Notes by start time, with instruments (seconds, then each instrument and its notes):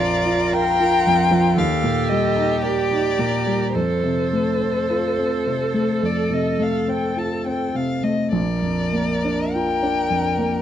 Already playing: grand piano A#1 F2 F3, violin F4 D5, cello A#4
0.25 grand piano F4
0.53 violin F4 G5, grand piano A#4
0.80 grand piano F4
1.07 grand piano F2
1.31 grand piano F3
1.56 grand piano D#2, violin G4 F5, cello A4
1.83 grand piano A#2
2.09 grand piano G3, violin D#5
2.36 grand piano D#4
2.62 cello G4, grand piano A#4, violin D5
2.91 grand piano D#4
3.19 grand piano A#2, cello A#4
3.47 grand piano G3
3.75 grand piano F2, cello A4, violin A4 C5
4.04 grand piano C3
4.33 grand piano A3
4.60 grand piano C4
4.90 grand piano F4
5.18 grand piano C4
5.46 grand piano C3
5.74 grand piano A3
6.03 grand piano F2, violin D5
6.30 grand piano C3, violin D#5
6.59 grand piano A3, violin F5
6.88 grand piano C4, violin G5
7.17 grand piano F4, violin A5
7.46 grand piano C4, violin G5
7.74 grand piano C3, violin F5
8.03 grand piano A3, violin D#5
8.32 grand piano A#1, violin A#4 D5
8.62 grand piano F2
8.93 grand piano A#3
9.24 grand piano D4
9.53 grand piano F4, violin G5
9.83 grand piano D4
10.10 grand piano F2
10.38 grand piano A#3